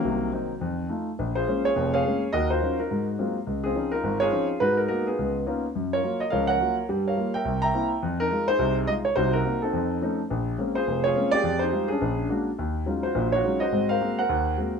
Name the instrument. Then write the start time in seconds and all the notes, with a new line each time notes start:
grand piano
Already playing: D#3 F#3 A#3
0.04 C2 C3
0.33 A#3 C4 D#4
0.61 F2
0.89 A3 D#4 F4
1.19 A#1
1.35 F4 G#4 C5
1.47 G#3 A#3 C#4
1.65 F4 G#4 C#5
1.76 F1 F2
1.94 G#4 C#5 F5
2.05 G#3 A#3 C#4
2.33 D#2 F#4 A#4 D#5
2.50 F4 F#4 C5
2.62 F#3 C#4 D#4 F4
2.79 D#4 F#4 A#4
2.91 G#2
3.18 F#3 G#3 A#3 C4 F4
3.47 C#2
3.64 C4 F4 G#4
3.75 F3 C4 C#4 D#4
3.92 D#4 F4 A#4
4.04 G#1
4.20 F4 G#4 C#5
4.31 F3 C4 C#4 D#4
4.60 G#2 G#3 D#4 F#4 B4
4.77 A#4
4.88 G#3 A#3 B3 F#4 A#4
5.07 B3 F4 G#4
5.19 C#2
5.46 A#3 B3 C#4 D#4 F4
5.75 F#2
5.93 F4 A#4 C#5
6.03 F#3 A#3 F4
6.20 D#5
6.30 C#2 F3 A#4 C#5 F5
6.47 A#4 C#5 F#5
6.60 F#3 A#3 F4
6.89 G2 G3
7.07 A#4 C#5 F5
7.17 G3 A#3 F4
7.34 A#4 E5 G5
7.45 C2
7.62 E5 G5 A#5
7.74 A#3 C4 E4
8.03 F2
8.20 D#4 A#4
8.31 G#3 D#4 F4
8.48 D#4 G#4 C5
8.59 C2 C3
8.87 G#3 D#4 F4 D#5
9.05 C#5
9.16 C2 C3 D#4 F#4 C5
9.33 D#4 F#4 A#4
9.45 A#3 C4 D#4
9.62 C4 D#4 A4
9.73 F2
10.01 F3 A3 C#4 D#4
10.30 A#1
10.58 G#3 A#3 C4 C#4
10.75 F4 G#4 C5
10.87 F1
11.04 F4 G#4 C#5
11.15 G#3 A#3 C4 C#4
11.31 G4 G#4 D5
11.43 F2
11.59 D#4 G#4 C5
11.73 G3 G#3 D#4 F4
11.88 C#4 D4 G#4
12.01 A#1
12.29 G#3 A#3 D4 F#4
12.59 D#2
12.86 F#3 G#3 C#4 D#4 F4
13.03 F4 F#4 C5
13.15 A#1 A#2
13.32 F4 F#4 C#5
13.44 F#3 G#3 C#4 D#4 F4
13.60 F#4 C5 D#5
13.72 G#2 C4
13.89 A#4 C5 F5
14.01 G#3 A#3 C4 F#4
14.19 A#4 C5 F#5
14.29 D#2
14.58 G#3 A#3 C4 F#4